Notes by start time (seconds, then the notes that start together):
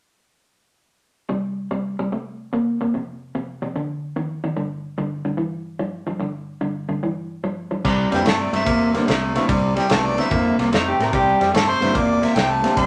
1.29 C3 G3
1.71 C3 G3
1.99 C3 G3
2.12 C3 A3
2.53 C3 A#3
2.81 C3 A#3
2.94 F2 C3
3.35 F2 C3
3.62 F2 C3
3.76 F2 D3
4.16 F2 D#3
4.44 F2 D#3
4.57 G2 D3
4.98 G2 D3
5.25 G2 D3
5.37 G2 E3
5.79 G2 F3
6.07 G2 F3
6.20 G2 D3
6.61 G2 D3
6.89 G2 D3
7.03 G2 E3
7.44 G2 F3
7.71 G2 F3
7.85 C2 C3 G3, kick, snare, crash
8.12 F2 C3 D3 G3 A#3 C4 E4 G4, snare, ride
8.25 G2 C3 A3 A4, snare, ride
8.41 D5
8.52 G2 C3 A3 E5, snare, ride
8.66 E2 C3 A#3, kick, ride
8.94 C3 D3 G3 A#3 C4 D4, snare, ride
9.07 C2 C3 A3, snare, ride
9.35 C3 D3 G3 A3 A#3 C4 E4, snare, ride
9.48 C2 C3 G3, kick, ride
9.76 C3 G3 G4, snare, ride
9.89 C2 C3 C#3 F#3 A3 B3 D#4 A4, snare, ride
10.06 D5
10.17 C3 D3 G3 A3 A#3 C4 E4 E5, snare, ride
10.31 F2 C3 A#3, kick, ride
10.59 C2 C3 A#3, snare, ride
10.72 F2 C3 A3 D#4, snare, ride
10.88 G4
10.99 A2 C3 A3 A#4, snare, ride
11.13 C2 C3 G3 G4, kick, ride
11.41 F2 C3 G3, snare, ride
11.54 G2 C3 A3 A4, snare, ride
11.70 C5
11.80 G2 C3 D3 G3 A3 A#3 C4 E4, snare, ride
11.94 E2 C3 A#3 D5, kick, ride
12.21 C3 A#3 E5, snare, ride
12.36 C2 C3 A3 G5, snare, ride
12.51 A5
12.62 C3 D3 G3 A3 A#3 C4 G4, snare, ride
12.77 C2 C3 G3 C6, kick, ride